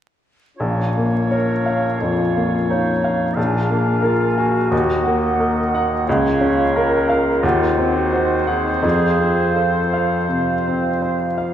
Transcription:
0.58 1.96 A#1 soft
0.58 3.33 C#4 soft
0.58 3.33 F4 soft
0.58 3.37 C#5 soft
0.58 3.34 F5 soft
0.97 1.52 A#3 soft
1.30 2.01 A#4 medium
1.30 1.86 C#5 soft
1.66 2.22 F5 soft
2.00 2.56 F2 soft
2.00 2.68 F4 medium
2.37 2.91 A#3 soft
2.69 3.39 D#4 medium
2.69 3.24 C#5 soft
3.04 3.38 F5 soft
3.35 4.68 A#1 soft
3.35 7.38 A#3 soft
3.35 4.06 D4 medium
3.35 4.71 G#4 soft
3.35 4.70 F5 soft
3.35 4.69 G#5 soft
3.71 4.25 A#3 soft
4.02 4.38 F4 medium
4.02 4.57 A#4 soft
4.38 5.70 F#4 medium
4.38 4.72 G#5 soft
4.70 6.02 D#2 medium
4.70 6.06 F#4 soft
4.70 6.03 D#5 soft
4.70 6.06 F#5 soft
5.06 5.60 A#3 soft
5.40 5.93 A#4 soft
5.75 6.07 F#5 soft
6.05 7.40 C#2 medium
6.05 7.43 F4 medium
6.05 7.14 C#5 medium
6.05 7.43 F5 medium
6.41 6.95 C#4 soft
6.75 7.40 A#4 medium
6.75 7.30 A#4 soft
7.09 7.44 F5 soft
7.42 8.80 D#2 medium
7.42 11.44 C4 medium
7.42 8.83 D#4 medium
7.42 7.97 F4 medium
7.42 11.39 C5 medium
7.42 8.52 F#5 medium
7.78 8.34 C4 soft
7.95 8.49 F#4 medium
8.12 8.69 C5 soft
8.47 8.82 G#4 medium
8.47 8.83 F#5 soft
8.82 10.25 F2 medium
8.82 11.54 F4 soft
8.82 9.55 G#4 medium
8.82 11.54 F5 medium
9.18 9.78 C4 soft
9.54 11.02 A4 medium
9.54 10.15 C5 soft
9.93 10.52 F5 soft
10.29 10.88 C3 soft
10.68 11.25 C4 soft
11.02 11.54 C5 soft
11.38 11.54 F5 soft

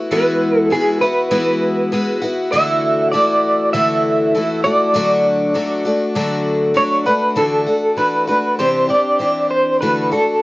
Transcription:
0.00 0.11 B3 soft
0.00 0.11 E4 medium
0.00 0.11 F#4 medium
0.11 0.75 E3 medium
0.11 0.69 G#3 medium
0.11 0.70 B3 medium
0.11 0.72 E4 medium
0.11 0.72 F#4 medium
0.11 0.60 B4 medium
0.60 0.72 A4 medium
0.70 1.01 G#3 medium
0.70 1.01 B3 medium
0.70 1.01 E4 medium
0.70 1.00 F#4 medium
0.70 1.00 G#4 medium
1.01 1.30 B3 soft
1.01 1.30 E4 medium
1.01 1.31 F#4 medium
1.01 2.18 B4 medium
1.31 1.91 E3 medium
1.31 1.91 G#3 medium
1.31 1.92 B3 medium
1.31 1.92 E4 medium
1.31 1.93 F#4 medium
1.92 2.22 G#3 medium
1.92 2.22 B3 medium
1.92 2.22 E4 medium
1.92 2.20 F#4 medium
2.22 2.53 B3 soft
2.22 2.52 E4 medium
2.22 2.52 F#4 medium
2.52 3.16 D3 medium
2.52 3.11 E3 medium
2.52 3.13 A3 medium
2.52 3.12 E4 medium
2.52 3.14 F#4 medium
2.52 3.11 E5 loud
3.11 3.72 E3 medium
3.11 3.74 A3 medium
3.11 3.73 E4 medium
3.11 3.75 F#4 medium
3.11 3.73 D5 loud
3.73 4.37 D3 medium
3.73 4.33 E3 medium
3.73 4.35 A3 medium
3.73 4.34 E4 medium
3.73 4.36 F#4 medium
3.73 4.63 E5 loud
4.34 4.64 E3 medium
4.34 4.65 A3 medium
4.34 4.64 E4 medium
4.34 4.63 F#4 medium
4.64 4.94 A3 soft
4.64 4.95 E4 soft
4.64 4.94 F#4 medium
4.64 6.73 D5 medium
4.94 5.55 D3 medium
4.94 5.53 F#3 medium
4.94 5.54 A3 medium
4.94 5.54 D4 medium
4.94 5.55 F#4 medium
5.54 5.85 F#3 medium
5.54 5.86 A3 medium
5.54 5.85 D4 medium
5.54 5.84 F#4 medium
5.85 6.15 A3 soft
5.85 6.15 D4 medium
5.85 6.15 F#4 medium
6.15 6.76 D3 medium
6.15 6.73 F#3 medium
6.15 6.74 A3 medium
6.15 6.75 D4 medium
6.15 6.76 F#4 medium
6.74 7.06 F#3 medium
6.74 7.07 A3 medium
6.74 7.06 D4 medium
6.74 7.05 F#4 medium
6.74 7.06 C#5 medium
7.06 7.36 A3 soft
7.06 7.35 D4 soft
7.06 7.36 F#4 medium
7.06 7.38 B4 medium
7.36 7.67 D3 medium
7.36 7.67 E3 medium
7.36 7.67 A3 medium
7.36 7.67 D4 medium
7.36 7.65 F#4 medium
7.36 8.00 A4 medium
7.67 7.96 A3 soft
7.67 7.97 D4 soft
7.67 7.97 F#4 soft
7.97 8.28 E3 soft
7.97 8.28 A3 medium
7.97 8.27 D4 medium
7.97 8.26 F#4 medium
7.97 8.27 B4 medium
8.27 8.59 A3 soft
8.27 8.59 D4 soft
8.27 8.59 F#4 soft
8.27 8.59 B4 medium
8.59 8.90 C3 medium
8.59 8.90 E3 medium
8.59 8.89 C4 medium
8.59 8.88 D4 medium
8.59 8.87 G4 medium
8.59 8.88 C5 medium
8.89 9.19 C4 soft
8.89 9.19 D4 soft
8.89 9.20 G4 soft
8.89 9.50 D5 medium
9.19 9.81 E3 medium
9.19 9.81 C4 medium
9.19 9.82 D4 medium
9.19 9.82 G4 medium
9.51 9.80 C5 medium
9.81 10.12 D3 medium
9.81 10.12 E3 medium
9.81 10.13 A3 medium
9.81 10.11 D4 medium
9.81 10.10 F#4 medium
9.81 10.10 B4 medium
10.11 10.42 A3 soft
10.11 10.42 D4 soft
10.11 10.42 F#4 soft
10.11 10.42 A4 medium

